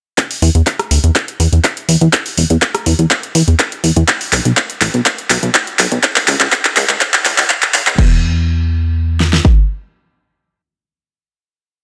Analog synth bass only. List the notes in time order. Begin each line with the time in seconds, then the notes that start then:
0.42 E2
0.55 E2
0.91 D2
1.04 E2
1.40 E2
1.53 E2
1.89 E2
2.01 E2
2.37 E1
2.50 E2
2.86 E2
2.99 E2
3.35 E2
3.48 E2
3.84 E2
3.96 E2
4.33 B1
4.45 B1
4.81 A1
4.94 B1
5.30 B1
5.43 B1
5.79 B1
5.92 B1
6.28 C#2
6.40 C#2
6.76 C#2
6.89 C#2
7.25 C#2
7.38 C#2
7.74 G#1
7.87 C#2
7.98 E2